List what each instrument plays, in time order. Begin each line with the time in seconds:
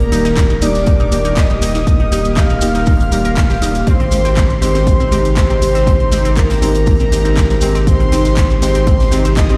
Already playing: analog synth bass D#1, ambient pad D#3 A#3 G4 A#4, soft synth lead A#4, supersaw synth A#5
0.00 closed hi-hat
0.12 synth pluck G3 A#3 D#4 G4, synth arpeggio sound D#4, snare, closed hi-hat, open hi-hat, maracas
0.25 synth arpeggio sound D#4, snare, closed hi-hat, maracas
0.36 kick, snare, clap, closed hi-hat, maracas
0.50 synth arpeggio sound D#4, closed hi-hat, maracas
0.62 synth pluck G3 A#3 D#4 G4, synth arpeggio sound D#4, soft synth lead D5, supersaw synth D6, closed hi-hat, open hi-hat, maracas
0.75 snare, closed hi-hat, maracas
0.86 synth arpeggio sound D#4, kick, closed hi-hat, maracas
1.00 synth arpeggio sound D#4, closed hi-hat, maracas
1.12 synth pluck G3 A#3 D#4 G4, closed hi-hat, open hi-hat, maracas
1.25 synth arpeggio sound D#4, closed hi-hat, maracas
1.37 synth arpeggio sound D#4, soft synth lead D#5, supersaw synth D#6, kick, snare, clap, closed hi-hat, maracas
1.50 synth pluck G3 A#3 D#4 G4, closed hi-hat, maracas
1.62 synth pluck G3 A#3 D#4 G4, synth arpeggio sound D#4, closed hi-hat, open hi-hat, maracas
1.75 synth arpeggio sound D#4, snare, closed hi-hat, maracas
1.87 kick, closed hi-hat, maracas
2.00 synth arpeggio sound D#4, closed hi-hat
2.12 synth pluck G3 A#3 D#4 G4, synth arpeggio sound D#4, closed hi-hat, open hi-hat, maracas
2.25 closed hi-hat, maracas
2.37 synth arpeggio sound D#4, soft synth lead F5, supersaw synth F6, kick, snare, clap, closed hi-hat, maracas
2.50 synth arpeggio sound D#4, closed hi-hat, maracas
2.61 synth pluck G3 A#3 D#4 G4, closed hi-hat, open hi-hat, maracas
2.75 synth arpeggio sound D#4, snare, closed hi-hat, maracas
2.86 synth arpeggio sound D#4, kick, closed hi-hat, open hi-hat, maracas
3.00 closed hi-hat, maracas
3.12 synth pluck G3 A#3 D#4 G4, synth arpeggio sound A#5, closed hi-hat, open hi-hat, maracas
3.25 synth arpeggio sound A#4, closed hi-hat, maracas
3.36 kick, snare, clap, closed hi-hat, maracas
3.50 synth arpeggio sound G4, snare, closed hi-hat, maracas
3.62 synth pluck G3 A#3 D#4 G4, synth arpeggio sound D#6, closed hi-hat, open hi-hat, maracas
3.75 snare, closed hi-hat, maracas
3.87 analog synth bass G#1, ambient pad C3 G#3 D#4, synth arpeggio sound C4, soft synth lead C5, supersaw synth C6, kick, closed hi-hat, maracas
4.00 synth arpeggio sound C4, closed hi-hat
4.11 synth pluck G#3 C4 D#4 G4, snare, closed hi-hat, open hi-hat, maracas
4.25 synth arpeggio sound C4, snare, closed hi-hat, maracas
4.37 synth arpeggio sound C4, kick, snare, clap, closed hi-hat, maracas
4.50 closed hi-hat, maracas
4.62 synth pluck G#3 C4 D#4 G4, synth arpeggio sound C4, soft synth lead C5, supersaw synth C6, closed hi-hat, open hi-hat, maracas
4.75 synth arpeggio sound C4, snare, closed hi-hat, maracas
4.87 kick, closed hi-hat, maracas
5.00 synth arpeggio sound C4, closed hi-hat, maracas
5.12 synth pluck G#3 C4 D#4 G4, synth arpeggio sound C4, closed hi-hat, open hi-hat, maracas
5.25 closed hi-hat, maracas
5.36 synth arpeggio sound C4, soft synth lead C5, supersaw synth C6, kick, snare, clap, closed hi-hat, maracas
5.50 synth pluck G#3 C4 D#4 G4, synth arpeggio sound C4, closed hi-hat, maracas
5.62 synth pluck G#3 C4 D#4 G4, closed hi-hat, open hi-hat, maracas
5.75 synth arpeggio sound C4, snare, closed hi-hat, maracas
5.87 synth arpeggio sound C4, kick, closed hi-hat, maracas
6.00 closed hi-hat
6.12 synth pluck G#3 C4 D#4 G4, synth arpeggio sound C4, snare, closed hi-hat, open hi-hat, maracas
6.25 synth arpeggio sound C4, closed hi-hat, maracas
6.36 soft synth lead A#4, supersaw synth A#5, kick, clap, closed hi-hat, maracas
6.50 synth arpeggio sound C4, snare, closed hi-hat, maracas
6.62 synth pluck G#3 C4 D#4 G4, synth arpeggio sound C4, open hi-hat, maracas
6.75 closed hi-hat, maracas
6.86 synth arpeggio sound C4, kick, closed hi-hat, open hi-hat, maracas
7.00 synth arpeggio sound C4, closed hi-hat, maracas
7.12 synth pluck G#3 C4 D#4 G4, closed hi-hat, open hi-hat, maracas
7.25 synth arpeggio sound C4, closed hi-hat, maracas
7.37 synth arpeggio sound C4, kick, snare, clap, closed hi-hat, maracas
7.49 synth pluck G#3 C4 D#4 G4, snare, closed hi-hat, maracas
7.61 synth pluck G#3 C4 D#4 G4, synth arpeggio sound C4, closed hi-hat, open hi-hat, maracas
7.75 synth arpeggio sound C4, snare, closed hi-hat, maracas
7.87 ambient pad D#4, soft synth lead C5, supersaw synth C6, kick, closed hi-hat, maracas
8.00 synth arpeggio sound C4, closed hi-hat
8.12 synth pluck G#3 C4 D#4 G4, synth arpeggio sound C4, snare, closed hi-hat, open hi-hat, maracas
8.25 snare, closed hi-hat, maracas
8.37 synth arpeggio sound C4, kick, snare, clap, closed hi-hat, maracas
8.50 synth arpeggio sound C4, closed hi-hat, maracas
8.62 synth pluck G#3 C4 D#4 G4, soft synth lead C5, supersaw synth C6, snare, closed hi-hat, open hi-hat, maracas
8.74 synth arpeggio sound C4, closed hi-hat, maracas
8.87 synth arpeggio sound C4, kick, closed hi-hat, maracas
9.00 snare, closed hi-hat, maracas
9.11 synth pluck G#3 C4 D#4 G4, synth arpeggio sound C4, snare, closed hi-hat, open hi-hat, maracas
9.25 synth arpeggio sound C4, closed hi-hat, maracas
9.37 soft synth lead D#5, supersaw synth D#6, kick, snare, clap, closed hi-hat, maracas
9.49 synth pluck G#3 C4 D#4 G4, synth arpeggio sound C4, closed hi-hat, maracas